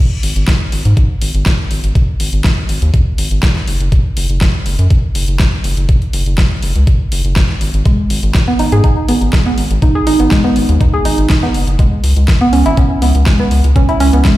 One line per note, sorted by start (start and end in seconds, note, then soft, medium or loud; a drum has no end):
0.23 0.33 G#1 medium
0.23 open hi-hat loud
0.36 0.45 G#1 medium
0.36 closed hi-hat medium
0.48 kick loud
0.48 snare loud
0.48 closed hi-hat medium
0.72 0.82 G#1 medium
0.72 open hi-hat loud
0.85 0.94 G#2 medium
0.85 closed hi-hat medium
0.97 kick loud
0.97 closed hi-hat medium
1.22 1.31 G#1 medium
1.22 open hi-hat loud
1.34 1.43 G#1 medium
1.34 closed hi-hat medium
1.46 kick loud
1.46 snare loud
1.46 closed hi-hat medium
1.71 1.80 G#1 medium
1.71 open hi-hat loud
1.84 1.92 G#1 medium
1.84 closed hi-hat medium
1.95 kick loud
1.95 closed hi-hat medium
2.20 2.30 G#1 medium
2.20 open hi-hat loud
2.33 2.42 G#1 medium
2.33 closed hi-hat medium
2.44 kick loud
2.44 snare loud
2.44 closed hi-hat medium
2.69 2.79 G#1 loud
2.69 open hi-hat loud
2.82 2.91 D#2 medium
2.82 closed hi-hat medium
2.94 kick loud
2.94 closed hi-hat medium
3.18 3.28 G#1 medium
3.18 open hi-hat loud
3.31 3.40 G#1 medium
3.31 closed hi-hat medium
3.43 kick loud
3.43 snare loud
3.43 closed hi-hat medium
3.56 snare soft
3.67 3.77 F#1 medium
3.67 open hi-hat loud
3.80 3.89 F#1 medium
3.80 closed hi-hat medium
3.92 kick loud
3.92 closed hi-hat medium
4.17 4.26 F#1 medium
4.17 open hi-hat loud
4.30 4.38 F#1 medium
4.30 closed hi-hat medium
4.41 kick loud
4.41 snare loud
4.41 closed hi-hat medium
4.66 4.75 F#1 medium
4.66 open hi-hat loud
4.79 4.87 F#2 medium
4.79 closed hi-hat medium
4.90 kick loud
4.90 closed hi-hat medium
5.15 5.25 F#1 loud
5.15 open hi-hat loud
5.28 5.37 F#1 medium
5.28 closed hi-hat soft
5.39 kick loud
5.39 snare loud
5.39 closed hi-hat medium
5.64 5.74 F#1 loud
5.64 open hi-hat loud
5.77 5.86 F#1 medium
5.77 closed hi-hat medium
5.89 kick loud
5.89 closed hi-hat medium
6.02 closed hi-hat soft
6.13 6.23 F#1 loud
6.13 open hi-hat loud
6.26 6.35 F#1 medium
6.26 closed hi-hat soft
6.38 kick loud
6.38 snare loud
6.38 closed hi-hat medium
6.63 6.72 F#1 medium
6.63 open hi-hat loud
6.76 6.84 C#2 medium
6.76 closed hi-hat soft
6.87 kick loud
6.87 closed hi-hat medium
7.12 7.21 F#1 loud
7.12 open hi-hat loud
7.25 7.33 F#1 medium
7.25 closed hi-hat soft
7.36 kick loud
7.36 snare loud
7.36 closed hi-hat medium
7.49 snare soft
7.61 7.71 G#1 medium
7.61 open hi-hat loud
7.74 7.83 G#1 medium
7.74 closed hi-hat medium
7.85 7.95 G#3 medium
7.85 kick loud
7.85 closed hi-hat medium
8.10 8.20 G#1 medium
8.10 open hi-hat loud
8.23 8.32 G#1 medium
8.23 closed hi-hat soft
8.35 kick loud
8.35 snare loud
8.35 closed hi-hat medium
8.48 8.52 B3 loud
8.59 8.69 G#1 medium
8.59 8.65 D#4 medium
8.59 open hi-hat loud
8.72 8.81 G#2 medium
8.72 8.80 G#4 loud
8.72 closed hi-hat medium
8.84 8.89 D#4 medium
8.84 kick loud
8.84 closed hi-hat medium
9.08 9.18 G#1 loud
9.08 9.17 B3 medium
9.08 open hi-hat loud
9.21 9.30 G#1 medium
9.21 closed hi-hat soft
9.33 9.38 G#3 loud
9.33 kick loud
9.33 snare loud
9.33 closed hi-hat medium
9.46 9.54 B3 loud
9.58 9.67 G#1 medium
9.58 open hi-hat loud
9.71 9.79 G#1 medium
9.71 closed hi-hat medium
9.82 9.88 D#4 medium
9.82 kick loud
9.82 closed hi-hat medium
9.95 10.03 G#4 loud
10.07 10.16 G#1 medium
10.07 10.19 D#4 loud
10.07 open hi-hat loud
10.20 10.28 G#1 medium
10.20 10.28 B3 medium
10.20 closed hi-hat medium
10.31 10.37 G#3 loud
10.31 kick loud
10.31 snare loud
10.31 closed hi-hat medium
10.44 10.52 B3 loud
10.56 10.66 G#1 medium
10.56 open hi-hat loud
10.69 10.78 D#2 medium
10.69 closed hi-hat medium
10.81 10.86 D#4 medium
10.81 kick loud
10.81 closed hi-hat medium
10.94 11.05 G#4 loud
11.05 11.15 G#1 medium
11.05 11.18 D#4 loud
11.05 open hi-hat loud
11.18 11.27 G#1 medium
11.18 closed hi-hat medium
11.30 kick loud
11.30 snare loud
11.30 closed hi-hat medium
11.43 11.54 B3 medium
11.43 snare soft
11.54 11.64 F#1 medium
11.54 open hi-hat loud
11.67 11.76 F#1 medium
11.67 closed hi-hat medium
11.79 11.88 G#3 medium
11.79 kick loud
11.79 closed hi-hat medium
12.04 12.13 C#2 loud
12.04 open hi-hat loud
12.17 12.25 C#2 medium
12.17 closed hi-hat medium
12.28 kick loud
12.28 snare loud
12.28 closed hi-hat medium
12.41 12.46 B3 loud
12.53 12.62 C#2 medium
12.53 12.58 C#4 medium
12.53 open hi-hat loud
12.66 12.74 G#1 medium
12.66 12.74 E4 loud
12.66 closed hi-hat medium
12.77 12.83 C#4 medium
12.77 kick loud
12.77 closed hi-hat medium
13.02 13.12 C#2 loud
13.02 13.11 B3 medium
13.02 open hi-hat loud
13.15 13.23 C#2 medium
13.15 closed hi-hat medium
13.26 13.32 G#3 loud
13.26 kick loud
13.26 snare loud
13.26 closed hi-hat medium
13.39 13.47 B3 loud
13.51 13.61 C#2 loud
13.51 open hi-hat loud
13.64 13.73 C#2 medium
13.64 closed hi-hat medium
13.76 13.81 C#4 medium
13.76 kick loud
13.76 closed hi-hat medium
13.89 13.97 E4 loud
13.89 closed hi-hat soft
14.00 14.10 C#2 loud
14.00 14.13 C#4 loud
14.00 open hi-hat loud
14.13 14.22 C#2 medium
14.13 14.21 B3 medium
14.13 closed hi-hat medium
14.25 14.30 G#3 loud
14.25 kick loud
14.25 snare loud
14.25 closed hi-hat medium